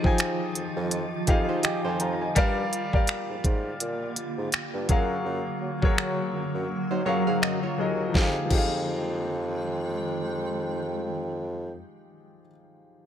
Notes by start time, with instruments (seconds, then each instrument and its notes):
Already playing: ambient pad D#3 F3 F4, grand piano F3 D#4 G4 G#4 C5 D#5
0.03 grand piano F3 D#4 G#4 G5 G#5, bassoon F3, kick
0.18 finger snap, closed hi-hat
0.55 bassoon F2, closed hi-hat
0.76 bassoon F2
0.91 closed hi-hat
1.27 bassoon F2, grand piano F3 D#4 G4 G#4 D#5 F5, kick, closed hi-hat
1.49 bassoon F3, nylon-string guitar D#4 C5, grand piano F5
1.63 nylon-string guitar G4 D#5, grand piano G5 G#5 D6, finger snap, closed hi-hat
1.85 bassoon F2, nylon-string guitar D#4 C5, grand piano G#5
2.00 bassoon F2, grand piano F5 A#5, closed hi-hat
2.13 grand piano A#5
2.21 grand piano D#5 G#5
2.35 bassoon G2, ambient pad D3 A#3, grand piano G3 G4 A#4 D5 F5, kick, closed hi-hat
2.73 closed hi-hat
2.92 grand piano G3 G4 A#4 D5 F5, kick
3.07 finger snap, closed hi-hat
3.29 bassoon G#2
3.44 bassoon G#2, kick, closed hi-hat
3.80 bassoon A#2, closed hi-hat
4.16 closed hi-hat
4.38 bassoon G#2
4.52 finger snap, closed hi-hat
4.74 bassoon G2
4.88 bassoon F#2, grand piano F#3 F#4 G#4 A#4 F5, ambient pad F#3, kick, closed hi-hat
5.25 bassoon F#2
5.61 bassoon F#3
5.82 grand piano F#3 F#4 G#4 A#4 C#5, bassoon F#3, kick
5.98 finger snap
6.34 bassoon F#2
6.55 bassoon F#2
6.91 bassoon F#3, nylon-string guitar D#4 C5
7.05 bassoon F#2, grand piano F#3 F#4 G#4 A#4 F5, nylon-string guitar F4 C#5
7.27 bassoon G#2, nylon-string guitar G#4 F5
7.42 bassoon F#2, nylon-string guitar F#4 D#5, finger snap
7.63 nylon-string guitar F4 C#5
7.77 bassoon D#2, grand piano F#3 F#4 G#4 A#4 D#5
8.09 grand piano F3 D#4
8.14 bassoon F2, ambient pad D#3 G#3 G5, grand piano G4, kick, snare
8.18 grand piano G#4 F5
8.45 grand piano F3 D#4
8.50 bassoon F2, grand piano G4, kick, crash
8.55 grand piano G#4 F5